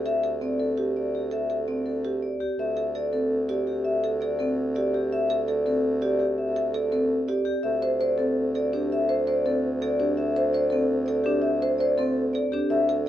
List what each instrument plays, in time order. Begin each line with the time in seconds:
Already playing: bassoon D2, vibraphone G4
0.06 marimba A4, vibraphone E5
0.23 marimba A4
0.41 marimba C4, vibraphone D5
0.60 vibraphone A4
0.78 marimba G4
0.97 vibraphone D5
1.15 vibraphone G4
1.32 marimba A4, vibraphone E5
1.50 marimba A4
1.68 marimba C4, vibraphone D5
1.86 vibraphone A4
2.05 marimba G4
2.23 vibraphone D5
2.41 vibraphone G4
2.59 bassoon D2, vibraphone E5
2.77 marimba A4
2.95 marimba A4, vibraphone D5
3.13 marimba C4, vibraphone A4
3.49 marimba G4, vibraphone D5
3.67 vibraphone G4
3.84 vibraphone E5
4.04 marimba A4
4.20 marimba A4, vibraphone D5
4.39 marimba C4, vibraphone A4
4.75 marimba G4, vibraphone D5
4.94 vibraphone G4
5.12 vibraphone E5
5.30 marimba A4
5.47 marimba A4, vibraphone D5
5.66 marimba C4, vibraphone A4
6.02 marimba G4, vibraphone D5
6.20 vibraphone G4
6.38 vibraphone E5
6.56 marimba A4
6.74 marimba A4, vibraphone D5
6.92 marimba C4, vibraphone A4
7.28 marimba G4, vibraphone D5
7.45 vibraphone G4
7.63 bassoon D2, vibraphone E5
7.83 marimba C5
8.01 marimba C5, vibraphone D5
8.18 marimba C4, vibraphone A4
8.55 marimba A4, vibraphone D5
8.73 marimba D4, vibraphone G4
8.92 vibraphone E5
9.09 marimba C5
9.27 marimba C5, vibraphone D5
9.46 marimba C4, vibraphone A4
9.82 marimba A4, vibraphone D5
9.99 marimba D4, vibraphone G4
10.17 vibraphone E5
10.36 marimba C5
10.53 marimba C5, vibraphone D5
10.70 marimba C4, vibraphone A4
11.06 marimba A4, vibraphone D5
11.24 marimba D4, vibraphone G4
11.42 vibraphone E5
11.62 marimba C5
11.79 marimba C5, vibraphone D5
11.98 marimba C4, vibraphone A4
12.33 marimba A4, vibraphone D5
12.52 marimba D4, vibraphone G4
12.70 bassoon D2, vibraphone E5
12.89 marimba A4